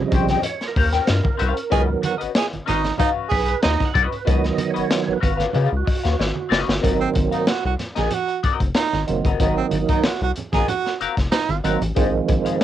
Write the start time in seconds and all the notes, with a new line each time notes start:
Already playing: C3 C#3 F3 G3
0.02 D#5
0.12 A#1 C#4 G4 C5 G5, kick, closed hi-hat, muted conga, low conga
0.28 G4 C5 G5, snare, closed hi-hat, high conga
0.33 C#4
0.42 C#5, muted clean electric guitar stroke, closed hi-hat, cowbell, muted conga, low conga
0.61 muted clean electric guitar stroke, snare, closed hi-hat
0.68 A#4
0.76 D#2 C#4 G4 C5 F5, kick, open hi-hat
0.93 C#4 G4 C5 G5, snare, closed hi-hat
1.07 G2, snare, closed hi-hat, cowbell, muted conga
1.24 muted clean electric guitar stroke, kick, high conga
1.37 C2 C#4 G4 C5 F5, closed hi-hat, muted conga
1.55 muted clean electric guitar stroke, closed hi-hat
1.70 C#2 D#3 F#3 B3 C#4 F#4 G#4 B4 D#5, kick, closed hi-hat, cowbell
1.87 muted clean electric guitar stroke
2.02 F#4, muted clean electric guitar stroke, closed hi-hat, muted conga, high conga
2.18 C#4 F#4 B4 D#5, closed hi-hat
2.22 G#1
2.35 G#4, snare, closed hi-hat, cowbell
2.51 G#1, muted clean electric guitar stroke, closed hi-hat, high conga
2.66 G#1 C#4 D#4 F#4 B4 D#5, snare, closed hi-hat, low conga
2.83 muted clean electric guitar stroke, snare, closed hi-hat, high conga
2.98 C#4 D#4 F#4 B4 F5, kick, closed hi-hat, cowbell, low conga
3.29 B1 G#4 B4, muted clean electric guitar stroke, kick, open hi-hat
3.47 muted clean electric guitar stroke, closed hi-hat
3.63 D#2 D#4 D#5, snare, closed hi-hat, cowbell, muted conga
3.79 muted clean electric guitar stroke, kick, snare, closed hi-hat, high conga
3.85 F#5
3.94 C2 C#4 F#4 B4 D#5, kick, closed hi-hat, muted conga
4.07 B4
4.11 muted clean electric guitar stroke, closed hi-hat
4.25 C#2 D#3 F#3 B3 C#4 F#4 B4 D#5, kick, closed hi-hat, cowbell
4.44 snare, closed hi-hat
4.58 muted clean electric guitar stroke, closed hi-hat, muted conga, high conga
4.71 B4 C#5 D#5
4.75 G#1 C#4 F#4, closed hi-hat
4.89 muted clean electric guitar stroke, snare, closed hi-hat, cowbell
5.06 G#1, muted clean electric guitar stroke, high conga
5.13 B4
5.21 G#1 C#4 F#4 B4 F5, kick, closed hi-hat, muted conga, low conga
5.38 C#4 F#4 B4 F5, snare, closed hi-hat, high conga
5.53 C#3 C#4 F#4 G#4 B4 F5, closed hi-hat, cowbell, muted conga, low conga
5.72 C#2
5.77 F#4
5.85 muted clean electric guitar stroke, kick, open hi-hat, cowbell
6.04 D#2 C#4 F#4 B4 F5, snare, closed hi-hat
6.19 G#1, snare, cowbell, muted conga
6.34 muted clean electric guitar stroke, high conga
6.49 F#1 C#4 F#4 B4 D#5, snare, cowbell, muted conga
6.66 G1, muted clean electric guitar stroke, snare
6.81 G#1 D#3 F#3 A#3 C4 F#4 A#4 D#5, kick, closed hi-hat
7.00 C4
7.13 G#1, muted clean electric guitar stroke, kick, closed hi-hat, high conga
7.31 C4 D#4 F#4 A#4 F5, closed hi-hat
7.46 F#4, snare, closed hi-hat, muted conga
7.64 C2 F#4, muted clean electric guitar stroke
7.79 snare, closed hi-hat, muted conga, low conga
7.95 A#1 C4 F#4 G#4 A#4 D#5, snare, closed hi-hat, high conga
8.10 F#4, closed hi-hat, muted conga, low conga
8.28 muted clean electric guitar stroke, closed hi-hat
8.43 F#1 C4 F#4 A#4 D#5, kick, closed hi-hat, muted conga
8.60 F#1, muted clean electric guitar stroke, kick, closed hi-hat
8.74 D#4, muted clean electric guitar stroke, snare, closed hi-hat, muted conga
8.93 G#1, muted clean electric guitar stroke, snare, high conga
9.07 F#1 D#3 F#3 A#3 C4, closed hi-hat, muted conga
9.25 G1 C4 F#4 A#4 D#5, kick, closed hi-hat, low conga
9.40 G#1 D#3 F#3 A#3 C4 D#4 F#4 A#4 D#5, kick, closed hi-hat
9.57 C4
9.71 G#1, muted clean electric guitar stroke, closed hi-hat, muted conga, high conga
9.89 C4 D#4 F#4 A#4 D#5, kick, closed hi-hat
10.04 F#4, snare, closed hi-hat, muted conga
10.21 C2 F#4, muted clean electric guitar stroke, closed hi-hat
10.36 closed hi-hat, muted conga, low conga
10.53 A#1 C4 F#4 G#4 A#4 D#5, kick, snare, closed hi-hat, high conga
10.68 F#4, closed hi-hat, muted conga, low conga
10.85 muted clean electric guitar stroke, snare, closed hi-hat
11.01 F#1 C4 F#4 A#4 F5, closed hi-hat
11.17 F#1, muted clean electric guitar stroke, kick, snare, closed hi-hat
11.32 D#4, snare, closed hi-hat
11.49 G#1, muted clean electric guitar stroke, closed hi-hat, high conga
11.64 G#1 D#3 F#3 A#3 C4 F#4 A#4 F5, closed hi-hat
11.81 A1, muted clean electric guitar stroke, closed hi-hat, low conga
11.95 A#1 D#3 F3 G#3 C4 D#4 G#4 C5 D#5, kick, closed hi-hat, cowbell, muted conga
12.28 A#1, muted clean electric guitar stroke, kick, closed hi-hat, high conga
12.45 D#4 G#4 C5 F5, closed hi-hat
12.60 muted clean electric guitar stroke, snare, closed hi-hat, cowbell